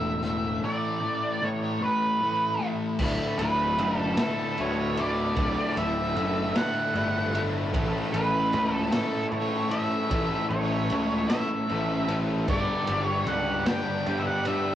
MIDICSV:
0, 0, Header, 1, 7, 480
1, 0, Start_track
1, 0, Key_signature, 2, "major"
1, 0, Tempo, 790514
1, 384, Time_signature, 6, 3, 24, 8
1, 8957, End_track
2, 0, Start_track
2, 0, Title_t, "String machine"
2, 0, Program_c, 0, 50
2, 1819, Note_on_c, 0, 69, 80
2, 1820, Note_on_c, 0, 78, 73
2, 1820, Note_on_c, 0, 88, 86
2, 1822, Note_on_c, 0, 81, 66
2, 4675, Note_off_c, 0, 78, 0
2, 4676, Note_off_c, 0, 81, 0
2, 4714, Note_on_c, 0, 76, 69
2, 4718, Note_on_c, 0, 85, 69
2, 6115, Note_off_c, 0, 88, 0
2, 6148, Note_on_c, 0, 90, 91
2, 7554, Note_off_c, 0, 69, 0
2, 7563, Note_off_c, 0, 76, 0
2, 7565, Note_off_c, 0, 85, 0
2, 7570, Note_off_c, 0, 90, 0
2, 7574, Note_on_c, 0, 83, 70
2, 7577, Note_on_c, 0, 67, 73
2, 7580, Note_on_c, 0, 74, 76
2, 7581, Note_on_c, 0, 86, 85
2, 8957, Note_off_c, 0, 67, 0
2, 8957, Note_off_c, 0, 74, 0
2, 8957, Note_off_c, 0, 83, 0
2, 8957, Note_off_c, 0, 86, 0
2, 8957, End_track
3, 0, Start_track
3, 0, Title_t, "Lead electric guitar"
3, 0, Program_c, 1, 29
3, 0, Note_on_c, 1, 76, 99
3, 359, Note_off_c, 1, 76, 0
3, 394, Note_on_c, 1, 74, 96
3, 881, Note_off_c, 1, 74, 0
3, 883, Note_on_c, 1, 73, 83
3, 1113, Note_off_c, 1, 73, 0
3, 1115, Note_on_c, 1, 71, 79
3, 1624, Note_off_c, 1, 71, 0
3, 2058, Note_on_c, 1, 71, 85
3, 2422, Note_off_c, 1, 71, 0
3, 2422, Note_on_c, 1, 69, 85
3, 2554, Note_off_c, 1, 69, 0
3, 2557, Note_on_c, 1, 69, 90
3, 2796, Note_off_c, 1, 69, 0
3, 2797, Note_on_c, 1, 73, 89
3, 3033, Note_off_c, 1, 73, 0
3, 3035, Note_on_c, 1, 74, 91
3, 3484, Note_off_c, 1, 74, 0
3, 3509, Note_on_c, 1, 76, 104
3, 3960, Note_off_c, 1, 76, 0
3, 3987, Note_on_c, 1, 78, 96
3, 4499, Note_off_c, 1, 78, 0
3, 4935, Note_on_c, 1, 71, 86
3, 5299, Note_off_c, 1, 71, 0
3, 5299, Note_on_c, 1, 69, 86
3, 5416, Note_off_c, 1, 69, 0
3, 5416, Note_on_c, 1, 69, 87
3, 5640, Note_on_c, 1, 73, 87
3, 5665, Note_off_c, 1, 69, 0
3, 5896, Note_on_c, 1, 76, 94
3, 5898, Note_off_c, 1, 73, 0
3, 6369, Note_on_c, 1, 73, 91
3, 6393, Note_off_c, 1, 76, 0
3, 6831, Note_off_c, 1, 73, 0
3, 6851, Note_on_c, 1, 76, 96
3, 7371, Note_off_c, 1, 76, 0
3, 7590, Note_on_c, 1, 74, 108
3, 7930, Note_off_c, 1, 74, 0
3, 7930, Note_on_c, 1, 73, 108
3, 8062, Note_on_c, 1, 78, 99
3, 8079, Note_off_c, 1, 73, 0
3, 8300, Note_off_c, 1, 78, 0
3, 8302, Note_on_c, 1, 79, 105
3, 8620, Note_off_c, 1, 79, 0
3, 8622, Note_on_c, 1, 76, 75
3, 8656, Note_off_c, 1, 76, 0
3, 8665, Note_on_c, 1, 78, 102
3, 8786, Note_off_c, 1, 78, 0
3, 8788, Note_on_c, 1, 76, 94
3, 8957, Note_off_c, 1, 76, 0
3, 8957, End_track
4, 0, Start_track
4, 0, Title_t, "Overdriven electric guitar"
4, 0, Program_c, 2, 29
4, 0, Note_on_c, 2, 45, 80
4, 0, Note_on_c, 2, 52, 81
4, 0, Note_on_c, 2, 57, 84
4, 135, Note_off_c, 2, 45, 0
4, 142, Note_on_c, 2, 45, 87
4, 143, Note_off_c, 2, 52, 0
4, 144, Note_off_c, 2, 57, 0
4, 146, Note_on_c, 2, 52, 90
4, 147, Note_on_c, 2, 57, 97
4, 375, Note_off_c, 2, 45, 0
4, 378, Note_off_c, 2, 52, 0
4, 382, Note_on_c, 2, 45, 89
4, 384, Note_off_c, 2, 57, 0
4, 385, Note_on_c, 2, 52, 86
4, 392, Note_on_c, 2, 57, 96
4, 616, Note_off_c, 2, 45, 0
4, 622, Note_off_c, 2, 52, 0
4, 624, Note_on_c, 2, 45, 79
4, 625, Note_off_c, 2, 57, 0
4, 629, Note_on_c, 2, 52, 88
4, 632, Note_on_c, 2, 57, 88
4, 853, Note_off_c, 2, 45, 0
4, 853, Note_off_c, 2, 52, 0
4, 858, Note_off_c, 2, 57, 0
4, 861, Note_on_c, 2, 45, 88
4, 861, Note_on_c, 2, 52, 79
4, 866, Note_on_c, 2, 57, 96
4, 1088, Note_off_c, 2, 45, 0
4, 1089, Note_off_c, 2, 52, 0
4, 1093, Note_off_c, 2, 57, 0
4, 1095, Note_on_c, 2, 45, 91
4, 1097, Note_on_c, 2, 52, 88
4, 1100, Note_on_c, 2, 57, 93
4, 1329, Note_off_c, 2, 45, 0
4, 1332, Note_off_c, 2, 52, 0
4, 1336, Note_off_c, 2, 57, 0
4, 1336, Note_on_c, 2, 45, 80
4, 1339, Note_on_c, 2, 52, 88
4, 1343, Note_on_c, 2, 57, 99
4, 1568, Note_off_c, 2, 45, 0
4, 1573, Note_off_c, 2, 52, 0
4, 1575, Note_on_c, 2, 45, 86
4, 1578, Note_off_c, 2, 57, 0
4, 1580, Note_on_c, 2, 52, 94
4, 1585, Note_on_c, 2, 57, 104
4, 1804, Note_off_c, 2, 45, 0
4, 1807, Note_off_c, 2, 52, 0
4, 1809, Note_off_c, 2, 57, 0
4, 1818, Note_on_c, 2, 38, 84
4, 1822, Note_on_c, 2, 45, 95
4, 1827, Note_on_c, 2, 50, 89
4, 1833, Note_on_c, 2, 57, 94
4, 1836, Note_on_c, 2, 64, 97
4, 2056, Note_off_c, 2, 64, 0
4, 2058, Note_on_c, 2, 64, 75
4, 2068, Note_off_c, 2, 57, 0
4, 2070, Note_on_c, 2, 57, 72
4, 2073, Note_off_c, 2, 50, 0
4, 2075, Note_on_c, 2, 50, 59
4, 2294, Note_off_c, 2, 45, 0
4, 2301, Note_on_c, 2, 45, 69
4, 2302, Note_off_c, 2, 50, 0
4, 2305, Note_on_c, 2, 50, 80
4, 2309, Note_off_c, 2, 57, 0
4, 2311, Note_on_c, 2, 57, 83
4, 2312, Note_off_c, 2, 64, 0
4, 2315, Note_on_c, 2, 64, 83
4, 2333, Note_off_c, 2, 38, 0
4, 2535, Note_off_c, 2, 64, 0
4, 2538, Note_on_c, 2, 64, 75
4, 2541, Note_off_c, 2, 57, 0
4, 2544, Note_on_c, 2, 57, 67
4, 2548, Note_off_c, 2, 50, 0
4, 2555, Note_on_c, 2, 50, 73
4, 2770, Note_off_c, 2, 45, 0
4, 2775, Note_off_c, 2, 50, 0
4, 2777, Note_on_c, 2, 45, 78
4, 2783, Note_on_c, 2, 50, 70
4, 2786, Note_off_c, 2, 57, 0
4, 2788, Note_on_c, 2, 57, 71
4, 2793, Note_off_c, 2, 64, 0
4, 2796, Note_on_c, 2, 64, 83
4, 3018, Note_off_c, 2, 64, 0
4, 3020, Note_on_c, 2, 64, 67
4, 3029, Note_off_c, 2, 50, 0
4, 3029, Note_off_c, 2, 57, 0
4, 3031, Note_on_c, 2, 57, 69
4, 3036, Note_on_c, 2, 50, 60
4, 3259, Note_off_c, 2, 45, 0
4, 3259, Note_on_c, 2, 38, 83
4, 3260, Note_off_c, 2, 50, 0
4, 3267, Note_on_c, 2, 50, 91
4, 3269, Note_off_c, 2, 57, 0
4, 3269, Note_on_c, 2, 45, 94
4, 3272, Note_on_c, 2, 57, 102
4, 3274, Note_off_c, 2, 64, 0
4, 3276, Note_on_c, 2, 64, 100
4, 3490, Note_off_c, 2, 64, 0
4, 3492, Note_on_c, 2, 64, 81
4, 3501, Note_off_c, 2, 57, 0
4, 3504, Note_on_c, 2, 57, 65
4, 3507, Note_off_c, 2, 50, 0
4, 3514, Note_on_c, 2, 50, 59
4, 3735, Note_off_c, 2, 45, 0
4, 3740, Note_off_c, 2, 38, 0
4, 3743, Note_on_c, 2, 45, 68
4, 3744, Note_off_c, 2, 50, 0
4, 3750, Note_off_c, 2, 57, 0
4, 3751, Note_on_c, 2, 50, 69
4, 3752, Note_on_c, 2, 57, 72
4, 3756, Note_off_c, 2, 64, 0
4, 3758, Note_on_c, 2, 64, 82
4, 3980, Note_off_c, 2, 64, 0
4, 3982, Note_on_c, 2, 64, 80
4, 3989, Note_off_c, 2, 57, 0
4, 3991, Note_off_c, 2, 50, 0
4, 3992, Note_on_c, 2, 57, 74
4, 3998, Note_on_c, 2, 50, 59
4, 4206, Note_off_c, 2, 45, 0
4, 4214, Note_on_c, 2, 45, 83
4, 4220, Note_off_c, 2, 50, 0
4, 4227, Note_off_c, 2, 57, 0
4, 4227, Note_on_c, 2, 50, 76
4, 4229, Note_on_c, 2, 57, 90
4, 4234, Note_off_c, 2, 64, 0
4, 4236, Note_on_c, 2, 64, 96
4, 4455, Note_off_c, 2, 64, 0
4, 4457, Note_on_c, 2, 64, 75
4, 4464, Note_off_c, 2, 50, 0
4, 4464, Note_off_c, 2, 57, 0
4, 4466, Note_on_c, 2, 57, 66
4, 4471, Note_on_c, 2, 50, 62
4, 4682, Note_off_c, 2, 45, 0
4, 4691, Note_off_c, 2, 50, 0
4, 4704, Note_on_c, 2, 45, 92
4, 4710, Note_on_c, 2, 52, 83
4, 4713, Note_off_c, 2, 57, 0
4, 4715, Note_on_c, 2, 57, 92
4, 4716, Note_on_c, 2, 61, 91
4, 4718, Note_off_c, 2, 64, 0
4, 4718, Note_on_c, 2, 64, 96
4, 4724, Note_on_c, 2, 69, 105
4, 4941, Note_off_c, 2, 69, 0
4, 4943, Note_on_c, 2, 69, 84
4, 4949, Note_off_c, 2, 64, 0
4, 4952, Note_on_c, 2, 64, 72
4, 4954, Note_off_c, 2, 61, 0
4, 4956, Note_off_c, 2, 57, 0
4, 4957, Note_on_c, 2, 61, 67
4, 4958, Note_on_c, 2, 57, 61
4, 5173, Note_off_c, 2, 57, 0
4, 5175, Note_on_c, 2, 57, 79
4, 5183, Note_off_c, 2, 61, 0
4, 5185, Note_on_c, 2, 61, 73
4, 5187, Note_off_c, 2, 64, 0
4, 5190, Note_on_c, 2, 64, 78
4, 5191, Note_off_c, 2, 69, 0
4, 5194, Note_on_c, 2, 69, 79
4, 5412, Note_off_c, 2, 69, 0
4, 5416, Note_off_c, 2, 64, 0
4, 5419, Note_on_c, 2, 69, 78
4, 5423, Note_off_c, 2, 61, 0
4, 5424, Note_on_c, 2, 64, 70
4, 5425, Note_off_c, 2, 57, 0
4, 5430, Note_on_c, 2, 61, 74
4, 5432, Note_on_c, 2, 57, 67
4, 5645, Note_off_c, 2, 57, 0
4, 5650, Note_off_c, 2, 61, 0
4, 5652, Note_on_c, 2, 57, 77
4, 5657, Note_on_c, 2, 61, 79
4, 5658, Note_off_c, 2, 64, 0
4, 5660, Note_off_c, 2, 69, 0
4, 5666, Note_on_c, 2, 64, 87
4, 5667, Note_on_c, 2, 69, 85
4, 5882, Note_off_c, 2, 69, 0
4, 5888, Note_off_c, 2, 64, 0
4, 5889, Note_on_c, 2, 69, 70
4, 5895, Note_on_c, 2, 64, 74
4, 5897, Note_off_c, 2, 61, 0
4, 5899, Note_off_c, 2, 57, 0
4, 5904, Note_on_c, 2, 61, 65
4, 5907, Note_on_c, 2, 57, 62
4, 6133, Note_off_c, 2, 45, 0
4, 6135, Note_off_c, 2, 52, 0
4, 6135, Note_off_c, 2, 57, 0
4, 6135, Note_on_c, 2, 45, 85
4, 6136, Note_off_c, 2, 64, 0
4, 6137, Note_off_c, 2, 61, 0
4, 6137, Note_on_c, 2, 52, 91
4, 6141, Note_off_c, 2, 69, 0
4, 6142, Note_on_c, 2, 57, 85
4, 6144, Note_on_c, 2, 61, 91
4, 6144, Note_on_c, 2, 64, 92
4, 6148, Note_on_c, 2, 69, 102
4, 6363, Note_off_c, 2, 69, 0
4, 6370, Note_on_c, 2, 69, 75
4, 6372, Note_off_c, 2, 64, 0
4, 6377, Note_off_c, 2, 61, 0
4, 6379, Note_off_c, 2, 57, 0
4, 6379, Note_on_c, 2, 64, 70
4, 6384, Note_on_c, 2, 61, 69
4, 6386, Note_on_c, 2, 57, 59
4, 6606, Note_off_c, 2, 57, 0
4, 6612, Note_off_c, 2, 61, 0
4, 6614, Note_on_c, 2, 57, 70
4, 6618, Note_off_c, 2, 45, 0
4, 6619, Note_off_c, 2, 52, 0
4, 6619, Note_off_c, 2, 64, 0
4, 6619, Note_off_c, 2, 69, 0
4, 6619, Note_on_c, 2, 61, 84
4, 6626, Note_on_c, 2, 64, 76
4, 6626, Note_on_c, 2, 69, 86
4, 6839, Note_off_c, 2, 69, 0
4, 6846, Note_off_c, 2, 64, 0
4, 6846, Note_on_c, 2, 69, 77
4, 6851, Note_off_c, 2, 61, 0
4, 6853, Note_on_c, 2, 64, 70
4, 6854, Note_off_c, 2, 57, 0
4, 6858, Note_on_c, 2, 61, 67
4, 6861, Note_on_c, 2, 57, 68
4, 7082, Note_off_c, 2, 57, 0
4, 7088, Note_off_c, 2, 61, 0
4, 7089, Note_on_c, 2, 57, 70
4, 7095, Note_off_c, 2, 64, 0
4, 7095, Note_on_c, 2, 61, 81
4, 7101, Note_off_c, 2, 69, 0
4, 7103, Note_on_c, 2, 64, 78
4, 7108, Note_on_c, 2, 69, 81
4, 7323, Note_off_c, 2, 69, 0
4, 7325, Note_off_c, 2, 64, 0
4, 7330, Note_off_c, 2, 61, 0
4, 7330, Note_on_c, 2, 69, 68
4, 7332, Note_on_c, 2, 64, 73
4, 7336, Note_off_c, 2, 57, 0
4, 7337, Note_on_c, 2, 61, 59
4, 7344, Note_on_c, 2, 57, 67
4, 7561, Note_off_c, 2, 69, 0
4, 7562, Note_off_c, 2, 64, 0
4, 7565, Note_off_c, 2, 61, 0
4, 7568, Note_off_c, 2, 57, 0
4, 7570, Note_on_c, 2, 43, 80
4, 7574, Note_on_c, 2, 50, 89
4, 7577, Note_on_c, 2, 55, 91
4, 7580, Note_on_c, 2, 59, 90
4, 7582, Note_on_c, 2, 62, 92
4, 7586, Note_on_c, 2, 67, 99
4, 7809, Note_off_c, 2, 67, 0
4, 7811, Note_on_c, 2, 67, 79
4, 7815, Note_off_c, 2, 62, 0
4, 7818, Note_on_c, 2, 62, 74
4, 7825, Note_off_c, 2, 59, 0
4, 7827, Note_off_c, 2, 55, 0
4, 7827, Note_on_c, 2, 59, 71
4, 7829, Note_on_c, 2, 55, 61
4, 8051, Note_off_c, 2, 55, 0
4, 8054, Note_on_c, 2, 55, 77
4, 8056, Note_off_c, 2, 59, 0
4, 8057, Note_off_c, 2, 50, 0
4, 8059, Note_on_c, 2, 59, 78
4, 8063, Note_off_c, 2, 67, 0
4, 8065, Note_off_c, 2, 62, 0
4, 8066, Note_on_c, 2, 67, 87
4, 8067, Note_on_c, 2, 62, 82
4, 8291, Note_off_c, 2, 67, 0
4, 8295, Note_off_c, 2, 62, 0
4, 8298, Note_on_c, 2, 67, 82
4, 8300, Note_off_c, 2, 59, 0
4, 8302, Note_on_c, 2, 62, 79
4, 8305, Note_off_c, 2, 55, 0
4, 8308, Note_on_c, 2, 59, 69
4, 8313, Note_on_c, 2, 55, 64
4, 8533, Note_off_c, 2, 55, 0
4, 8539, Note_off_c, 2, 59, 0
4, 8540, Note_on_c, 2, 55, 72
4, 8544, Note_off_c, 2, 62, 0
4, 8546, Note_on_c, 2, 59, 77
4, 8550, Note_off_c, 2, 67, 0
4, 8551, Note_on_c, 2, 62, 77
4, 8557, Note_on_c, 2, 67, 80
4, 8773, Note_off_c, 2, 67, 0
4, 8779, Note_off_c, 2, 62, 0
4, 8780, Note_on_c, 2, 67, 75
4, 8785, Note_off_c, 2, 59, 0
4, 8786, Note_on_c, 2, 62, 69
4, 8791, Note_off_c, 2, 55, 0
4, 8792, Note_on_c, 2, 59, 68
4, 8798, Note_on_c, 2, 55, 60
4, 8957, Note_off_c, 2, 43, 0
4, 8957, Note_off_c, 2, 55, 0
4, 8957, Note_off_c, 2, 59, 0
4, 8957, Note_off_c, 2, 62, 0
4, 8957, Note_off_c, 2, 67, 0
4, 8957, End_track
5, 0, Start_track
5, 0, Title_t, "Distorted electric guitar"
5, 0, Program_c, 3, 30
5, 2552, Note_on_c, 3, 45, 78
5, 2562, Note_on_c, 3, 38, 71
5, 2780, Note_off_c, 3, 45, 0
5, 3031, Note_off_c, 3, 38, 0
5, 3989, Note_on_c, 3, 45, 81
5, 3996, Note_on_c, 3, 38, 88
5, 4210, Note_off_c, 3, 45, 0
5, 4468, Note_off_c, 3, 38, 0
5, 5423, Note_on_c, 3, 45, 67
5, 5424, Note_on_c, 3, 52, 79
5, 5901, Note_off_c, 3, 45, 0
5, 5902, Note_off_c, 3, 52, 0
5, 6870, Note_on_c, 3, 52, 78
5, 6875, Note_on_c, 3, 45, 84
5, 7345, Note_off_c, 3, 52, 0
5, 7348, Note_off_c, 3, 45, 0
5, 8304, Note_on_c, 3, 50, 81
5, 8306, Note_on_c, 3, 43, 76
5, 8782, Note_off_c, 3, 50, 0
5, 8783, Note_off_c, 3, 43, 0
5, 8957, End_track
6, 0, Start_track
6, 0, Title_t, "Picked electric bass"
6, 0, Program_c, 4, 34
6, 0, Note_on_c, 4, 28, 89
6, 356, Note_off_c, 4, 28, 0
6, 1819, Note_on_c, 4, 26, 93
6, 1930, Note_off_c, 4, 26, 0
6, 2060, Note_on_c, 4, 26, 100
6, 2301, Note_off_c, 4, 26, 0
6, 2301, Note_on_c, 4, 30, 106
6, 2520, Note_off_c, 4, 30, 0
6, 2787, Note_on_c, 4, 38, 91
6, 3240, Note_off_c, 4, 38, 0
6, 3258, Note_on_c, 4, 26, 99
6, 3369, Note_off_c, 4, 26, 0
6, 3502, Note_on_c, 4, 26, 99
6, 3734, Note_off_c, 4, 26, 0
6, 3734, Note_on_c, 4, 30, 101
6, 3956, Note_off_c, 4, 30, 0
6, 4221, Note_on_c, 4, 31, 92
6, 4676, Note_off_c, 4, 31, 0
6, 4705, Note_on_c, 4, 33, 96
6, 4812, Note_off_c, 4, 33, 0
6, 4939, Note_on_c, 4, 33, 105
6, 5184, Note_off_c, 4, 33, 0
6, 5184, Note_on_c, 4, 37, 108
6, 5402, Note_off_c, 4, 37, 0
6, 5659, Note_on_c, 4, 45, 97
6, 6115, Note_off_c, 4, 45, 0
6, 6139, Note_on_c, 4, 33, 98
6, 6249, Note_off_c, 4, 33, 0
6, 6374, Note_on_c, 4, 33, 104
6, 6631, Note_off_c, 4, 33, 0
6, 6631, Note_on_c, 4, 37, 105
6, 6845, Note_off_c, 4, 37, 0
6, 7111, Note_on_c, 4, 33, 89
6, 7561, Note_off_c, 4, 33, 0
6, 7579, Note_on_c, 4, 31, 89
6, 7689, Note_off_c, 4, 31, 0
6, 7829, Note_on_c, 4, 31, 100
6, 8068, Note_off_c, 4, 31, 0
6, 8068, Note_on_c, 4, 37, 110
6, 8284, Note_off_c, 4, 37, 0
6, 8543, Note_on_c, 4, 43, 98
6, 8957, Note_off_c, 4, 43, 0
6, 8957, End_track
7, 0, Start_track
7, 0, Title_t, "Drums"
7, 136, Note_on_c, 9, 42, 62
7, 196, Note_off_c, 9, 42, 0
7, 1814, Note_on_c, 9, 49, 127
7, 1818, Note_on_c, 9, 36, 111
7, 1875, Note_off_c, 9, 49, 0
7, 1878, Note_off_c, 9, 36, 0
7, 2058, Note_on_c, 9, 51, 82
7, 2118, Note_off_c, 9, 51, 0
7, 2298, Note_on_c, 9, 51, 84
7, 2358, Note_off_c, 9, 51, 0
7, 2533, Note_on_c, 9, 51, 109
7, 2535, Note_on_c, 9, 38, 123
7, 2593, Note_off_c, 9, 51, 0
7, 2596, Note_off_c, 9, 38, 0
7, 2778, Note_on_c, 9, 51, 76
7, 2838, Note_off_c, 9, 51, 0
7, 3018, Note_on_c, 9, 51, 75
7, 3079, Note_off_c, 9, 51, 0
7, 3256, Note_on_c, 9, 51, 99
7, 3259, Note_on_c, 9, 36, 117
7, 3316, Note_off_c, 9, 51, 0
7, 3319, Note_off_c, 9, 36, 0
7, 3502, Note_on_c, 9, 51, 70
7, 3563, Note_off_c, 9, 51, 0
7, 3741, Note_on_c, 9, 51, 70
7, 3802, Note_off_c, 9, 51, 0
7, 3979, Note_on_c, 9, 51, 108
7, 3982, Note_on_c, 9, 38, 117
7, 4040, Note_off_c, 9, 51, 0
7, 4042, Note_off_c, 9, 38, 0
7, 4222, Note_on_c, 9, 51, 71
7, 4283, Note_off_c, 9, 51, 0
7, 4462, Note_on_c, 9, 51, 71
7, 4523, Note_off_c, 9, 51, 0
7, 4700, Note_on_c, 9, 36, 118
7, 4701, Note_on_c, 9, 51, 102
7, 4760, Note_off_c, 9, 36, 0
7, 4762, Note_off_c, 9, 51, 0
7, 4942, Note_on_c, 9, 51, 71
7, 5002, Note_off_c, 9, 51, 0
7, 5179, Note_on_c, 9, 51, 74
7, 5239, Note_off_c, 9, 51, 0
7, 5418, Note_on_c, 9, 51, 105
7, 5420, Note_on_c, 9, 38, 124
7, 5479, Note_off_c, 9, 51, 0
7, 5481, Note_off_c, 9, 38, 0
7, 5657, Note_on_c, 9, 51, 81
7, 5718, Note_off_c, 9, 51, 0
7, 5897, Note_on_c, 9, 51, 71
7, 5957, Note_off_c, 9, 51, 0
7, 6136, Note_on_c, 9, 51, 109
7, 6137, Note_on_c, 9, 36, 112
7, 6197, Note_off_c, 9, 51, 0
7, 6198, Note_off_c, 9, 36, 0
7, 6376, Note_on_c, 9, 51, 78
7, 6437, Note_off_c, 9, 51, 0
7, 6615, Note_on_c, 9, 51, 82
7, 6676, Note_off_c, 9, 51, 0
7, 6858, Note_on_c, 9, 51, 107
7, 6861, Note_on_c, 9, 38, 117
7, 6919, Note_off_c, 9, 51, 0
7, 6921, Note_off_c, 9, 38, 0
7, 7101, Note_on_c, 9, 51, 76
7, 7162, Note_off_c, 9, 51, 0
7, 7338, Note_on_c, 9, 51, 75
7, 7398, Note_off_c, 9, 51, 0
7, 7579, Note_on_c, 9, 36, 115
7, 7579, Note_on_c, 9, 57, 102
7, 7639, Note_off_c, 9, 57, 0
7, 7640, Note_off_c, 9, 36, 0
7, 7817, Note_on_c, 9, 51, 77
7, 7878, Note_off_c, 9, 51, 0
7, 8055, Note_on_c, 9, 51, 75
7, 8116, Note_off_c, 9, 51, 0
7, 8296, Note_on_c, 9, 51, 104
7, 8298, Note_on_c, 9, 38, 112
7, 8357, Note_off_c, 9, 51, 0
7, 8359, Note_off_c, 9, 38, 0
7, 8539, Note_on_c, 9, 51, 66
7, 8600, Note_off_c, 9, 51, 0
7, 8774, Note_on_c, 9, 51, 71
7, 8834, Note_off_c, 9, 51, 0
7, 8957, End_track
0, 0, End_of_file